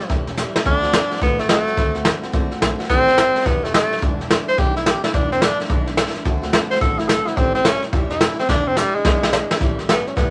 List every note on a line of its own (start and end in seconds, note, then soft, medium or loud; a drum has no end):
0.00 0.09 G3 soft
0.00 snare soft
0.09 0.42 E1 medium
0.09 0.27 A2 medium
0.09 0.27 E3 medium
0.09 0.28 G3 medium
0.09 0.27 C#4 loud
0.09 0.25 E4 medium
0.09 kick loud
0.09 snare soft
0.27 0.36 G3 medium
0.27 0.37 C#4 medium
0.27 0.37 E4 medium
0.27 snare soft
0.37 0.55 E3 medium
0.37 0.55 G3 medium
0.37 0.54 C#4 medium
0.37 0.53 E4 medium
0.37 snare medium
0.37 hi-hat pedal loud
0.54 0.65 G3 medium
0.54 0.65 C#4 medium
0.54 0.65 E4 medium
0.54 muted upright bass stroke medium
0.54 snare loud
0.64 0.98 D2 loud
0.64 0.83 D3 medium
0.64 0.83 A3 medium
0.64 0.83 C4 medium
0.64 1.20 D4 loud
0.64 0.81 F#4 medium
0.64 kick loud
0.64 snare soft
0.82 0.92 A3 soft
0.82 0.93 C4 medium
0.82 0.93 F#4 medium
0.82 snare soft
0.92 1.11 D3 medium
0.92 1.11 C4 medium
0.92 snare loud
0.92 hi-hat pedal loud
1.10 1.20 A3 medium
1.10 1.20 C4 medium
1.10 1.21 F#4 medium
1.10 muted upright bass stroke medium
1.10 snare soft
1.16 1.39 D3 medium
1.16 snare soft
1.21 1.54 A1 medium
1.21 1.39 A3 medium
1.21 1.41 B3 loud
1.21 1.38 C4 loud
1.21 1.37 F#4 medium
1.21 kick loud
1.21 snare soft
1.38 1.49 A3 loud
1.38 1.48 A3 soft
1.38 1.49 C4 soft
1.38 1.49 F#4 medium
1.38 snare soft
1.48 1.67 D3 medium
1.48 1.67 A3 medium
1.48 2.04 A3 loud
1.48 1.67 C4 medium
1.48 1.66 F#4 medium
1.48 snare loud
1.48 hi-hat pedal loud
1.67 1.76 A3 soft
1.67 1.77 C4 soft
1.67 1.77 F#4 medium
1.67 snare soft
1.76 2.10 D2 loud
1.76 1.95 D3 medium
1.76 1.95 A3 loud
1.76 1.95 C4 loud
1.76 1.93 F#4 medium
1.76 kick loud
1.76 snare soft
1.94 2.04 A3 medium
1.94 2.05 C4 medium
1.94 2.05 F#4 medium
1.94 snare soft
2.05 2.23 D3 medium
2.05 2.23 A3 medium
2.05 2.23 C4 medium
2.05 2.21 F#4 medium
2.05 snare loud
2.05 hi-hat pedal loud
2.22 2.32 A3 medium
2.22 2.33 C4 medium
2.22 2.33 F#4 medium
2.22 muted upright bass stroke medium
2.22 snare soft
2.32 2.49 C2 medium
2.32 2.51 D3 medium
2.32 2.51 A3 loud
2.32 2.51 C4 loud
2.32 2.49 F#4 loud
2.32 kick loud
2.32 snare soft
2.50 2.60 A3 soft
2.50 2.61 C4 medium
2.50 2.61 F#4 medium
2.50 muted upright bass stroke medium
2.50 snare soft
2.60 2.76 B1 medium
2.60 2.79 D3 medium
2.60 2.80 A3 medium
2.60 2.79 C4 medium
2.60 2.78 F#4 medium
2.60 snare loud
2.60 hi-hat pedal loud
2.79 2.89 A3 medium
2.79 2.90 C4 medium
2.79 2.89 F#4 medium
2.79 snare soft
2.85 3.07 A2 medium
2.85 snare soft
2.89 3.22 A1 medium
2.89 3.07 E3 medium
2.89 3.08 G3 medium
2.89 3.47 C4 loud
2.89 3.07 C#4 medium
2.89 3.05 E4 loud
2.89 kick loud
2.89 snare soft
3.06 3.18 C#4 medium
3.06 3.17 E4 medium
3.06 snare soft
3.17 3.35 E3 medium
3.17 3.36 G3 medium
3.17 3.35 C#4 medium
3.17 3.33 E4 medium
3.17 snare loud
3.17 hi-hat pedal loud
3.34 3.44 G3 medium
3.34 3.45 C#4 medium
3.34 3.45 E4 medium
3.34 muted upright bass stroke medium
3.34 snare soft
3.41 3.63 A2 medium
3.41 3.63 E3 medium
3.41 snare soft
3.46 3.78 E1 medium
3.46 3.64 G3 medium
3.46 3.65 B3 loud
3.46 3.63 C#4 medium
3.46 3.61 E4 medium
3.46 kick loud
3.46 snare soft
3.63 3.72 G3 soft
3.63 3.74 A3 medium
3.63 3.73 C#4 medium
3.63 3.73 E4 medium
3.63 snare soft
3.72 3.91 E3 medium
3.72 3.91 G3 medium
3.72 4.01 A3 loud
3.72 3.91 C#4 medium
3.72 snare loud
3.72 hi-hat pedal loud
3.90 4.01 G3 soft
3.90 4.02 C#4 medium
3.90 4.01 E4 medium
3.90 muted upright bass stroke medium
3.90 snare soft
3.97 4.19 E2 medium
3.97 4.19 B2 medium
3.97 snare soft
4.02 4.34 E1 medium
4.02 4.19 E3 medium
4.02 4.19 G#3 medium
4.02 4.18 D4 loud
4.02 4.17 E4 loud
4.02 kick loud
4.02 snare soft
4.18 4.28 E3 soft
4.18 4.29 G#3 medium
4.18 4.29 D4 medium
4.18 4.29 E4 medium
4.18 snare soft
4.29 4.47 E3 medium
4.29 4.48 G#3 medium
4.29 4.47 D4 medium
4.29 4.46 E4 medium
4.29 snare loud
4.29 hi-hat pedal loud
4.47 4.57 E3 soft
4.47 4.57 G#3 medium
4.47 4.57 D4 medium
4.47 4.58 E4 medium
4.47 4.60 C5 loud
4.47 muted upright bass stroke medium
4.47 snare soft
4.57 4.90 B1 medium
4.57 4.75 E2 medium
4.57 4.76 B2 medium
4.57 4.76 E3 medium
4.57 4.76 G#3 medium
4.57 4.75 D4 medium
4.57 4.74 E4 medium
4.57 4.76 G4 loud
4.57 kick loud
4.57 snare soft
4.75 4.84 E3 soft
4.75 4.85 G#3 soft
4.75 4.86 D4 medium
4.75 4.85 E4 medium
4.75 4.88 E4 medium
4.75 snare soft
4.85 5.03 E3 medium
4.85 5.04 G#3 medium
4.85 5.03 D4 medium
4.85 5.03 G4 loud
4.85 snare loud
4.85 hi-hat pedal loud
5.03 5.13 E3 soft
5.03 5.13 G#3 medium
5.03 5.13 D4 medium
5.03 5.13 E4 medium
5.03 muted upright bass stroke medium
5.03 snare medium
5.13 5.46 E1 medium
5.13 5.31 E2 loud
5.13 5.31 B2 medium
5.13 5.32 E3 medium
5.13 5.31 G#3 medium
5.13 5.31 D4 loud
5.13 5.31 D4 medium
5.13 5.29 E4 loud
5.13 kick loud
5.13 snare soft
5.31 5.39 E3 soft
5.31 5.40 G#3 soft
5.31 5.43 C4 medium
5.31 5.41 D4 soft
5.31 5.41 E4 medium
5.31 snare soft
5.40 5.59 E3 medium
5.40 5.59 D4 loud
5.40 snare loud
5.40 hi-hat pedal loud
5.58 5.69 E3 medium
5.58 5.69 G#3 medium
5.58 5.70 D4 medium
5.58 5.69 E4 medium
5.58 muted upright bass stroke medium
5.58 snare soft
5.65 snare soft
5.69 6.02 B1 medium
5.69 5.87 E2 medium
5.69 5.88 B2 loud
5.69 5.88 E3 loud
5.69 5.87 G#3 loud
5.69 5.86 D4 loud
5.69 5.85 E4 loud
5.69 kick loud
5.69 snare soft
5.86 5.95 E3 medium
5.86 5.96 G#3 medium
5.86 5.97 D4 medium
5.86 5.97 E4 medium
5.86 snare soft
5.96 6.15 E3 medium
5.96 6.15 G#3 medium
5.96 6.14 D4 medium
5.96 6.13 E4 medium
5.96 snare loud
5.96 hi-hat pedal loud
6.14 6.24 E3 medium
6.14 6.25 G#3 medium
6.14 6.26 D4 medium
6.14 6.25 E4 medium
6.14 muted upright bass stroke medium
6.14 snare soft
6.25 6.58 D2 loud
6.25 6.43 D3 loud
6.25 6.43 A3 medium
6.25 6.42 C4 loud
6.25 6.41 F#4 loud
6.25 kick loud
6.25 snare soft
6.42 6.52 A3 soft
6.42 6.53 C4 medium
6.42 6.53 F#4 medium
6.42 snare soft
6.52 6.71 D3 medium
6.52 6.71 A3 medium
6.52 6.69 F#4 medium
6.52 snare loud
6.52 hi-hat pedal loud
6.70 6.80 A3 medium
6.70 6.80 C4 medium
6.70 6.81 F#4 medium
6.70 6.80 C5 loud
6.70 muted upright bass stroke medium
6.70 snare soft
6.76 snare soft
6.80 7.13 A1 medium
6.80 6.99 D3 medium
6.80 6.99 A3 medium
6.80 6.99 C4 loud
6.80 6.97 F#4 medium
6.80 7.00 A4 medium
6.80 kick loud
6.80 snare soft
6.99 7.09 A3 soft
6.99 7.10 C4 medium
6.99 7.10 E4 medium
6.99 7.09 F#4 medium
6.99 snare soft
7.09 7.27 D3 medium
7.09 7.28 A3 medium
7.09 7.27 C4 medium
7.09 7.26 F#4 medium
7.09 7.28 A4 loud
7.09 snare loud
7.09 hi-hat pedal loud
7.27 7.38 A3 medium
7.27 7.38 C4 medium
7.27 7.39 E4 medium
7.27 7.37 F#4 medium
7.27 muted upright bass stroke medium
7.27 snare soft
7.37 7.69 A1 medium
7.37 7.55 A2 medium
7.37 7.55 E3 medium
7.37 7.55 G3 medium
7.37 7.54 C4 loud
7.37 7.55 C#4 loud
7.37 7.53 E4 medium
7.37 kick loud
7.37 snare soft
7.54 7.64 G3 soft
7.54 7.67 C4 loud
7.54 7.65 C#4 medium
7.54 7.65 E4 medium
7.54 snare soft
7.64 7.82 E3 medium
7.64 7.83 G3 medium
7.64 7.82 C#4 loud
7.64 7.83 C#4 medium
7.64 snare loud
7.64 hi-hat pedal loud
7.82 7.92 G3 medium
7.82 7.93 C#4 medium
7.82 7.93 E4 medium
7.82 muted upright bass stroke medium
7.82 snare soft
7.93 8.25 E1 medium
7.93 8.11 A2 loud
7.93 8.11 E3 loud
7.93 8.11 G3 loud
7.93 8.10 C#4 loud
7.93 8.09 E4 loud
7.93 kick loud
7.93 snare soft
8.10 8.20 G3 soft
8.10 8.21 C#4 medium
8.10 8.20 E4 medium
8.10 8.38 E4 loud
8.10 snare soft
8.20 8.38 E3 medium
8.20 8.39 G3 medium
8.20 8.38 C#4 medium
8.20 snare loud
8.20 hi-hat pedal loud
8.38 8.49 G3 medium
8.38 8.49 C4 loud
8.38 8.49 C#4 medium
8.38 8.49 E4 medium
8.38 muted upright bass stroke medium
8.38 snare soft
8.49 8.81 E1 loud
8.49 8.66 E2 medium
8.49 8.67 B2 medium
8.49 8.67 E3 loud
8.49 8.66 G#3 loud
8.49 8.69 D4 loud
8.49 8.66 D4 loud
8.49 8.65 E4 loud
8.49 kick loud
8.49 snare medium
8.66 8.75 E3 soft
8.66 8.76 G#3 medium
8.66 8.79 C4 loud
8.66 8.77 D4 medium
8.66 8.76 E4 medium
8.76 8.94 E3 medium
8.76 8.96 G3 loud
8.76 8.95 G#3 medium
8.76 8.94 D4 medium
8.76 8.93 E4 medium
8.76 snare medium
8.76 hi-hat pedal loud
8.95 9.05 E3 medium
8.95 9.59 G#3 loud
8.95 9.05 G#3 medium
8.95 9.05 D4 medium
8.95 9.05 E4 medium
9.05 9.37 B1 medium
9.05 9.22 E2 medium
9.05 9.23 B2 medium
9.05 9.23 E3 medium
9.05 9.23 G#3 medium
9.05 9.22 D4 medium
9.05 9.21 E4 loud
9.05 kick loud
9.05 snare loud
9.22 9.31 E3 medium
9.22 9.32 G#3 medium
9.22 9.33 D4 medium
9.22 9.32 E4 medium
9.22 snare medium
9.32 9.50 E3 medium
9.32 9.51 G#3 medium
9.32 9.50 D4 medium
9.32 9.49 E4 medium
9.32 snare loud
9.32 hi-hat pedal loud
9.49 9.60 E3 medium
9.49 9.61 G#3 medium
9.49 9.61 D4 medium
9.49 9.61 E4 medium
9.49 muted upright bass stroke medium
9.49 snare loud
9.61 9.93 A1 medium
9.61 9.78 A2 medium
9.61 9.79 E3 loud
9.61 9.79 G3 loud
9.61 9.78 C#4 loud
9.61 9.77 E4 loud
9.61 kick loud
9.61 snare soft
9.78 9.88 G3 soft
9.78 9.89 C#4 medium
9.78 9.88 E4 medium
9.78 snare soft
9.88 10.06 E3 medium
9.88 10.07 G3 medium
9.88 10.09 B3 loud
9.88 10.06 C#4 medium
9.88 snare loud
9.88 hi-hat pedal loud
10.06 10.16 G3 medium
10.06 10.16 C#4 medium
10.06 10.17 C#4 medium
10.06 10.16 E4 medium
10.06 muted upright bass stroke medium
10.06 snare soft
10.16 10.30 E1 medium
10.16 10.30 A2 medium
10.16 10.30 E3 medium
10.16 10.30 G3 medium
10.16 10.30 B3 medium
10.16 10.30 C#4 medium
10.16 10.30 E4 loud
10.16 kick loud
10.16 snare soft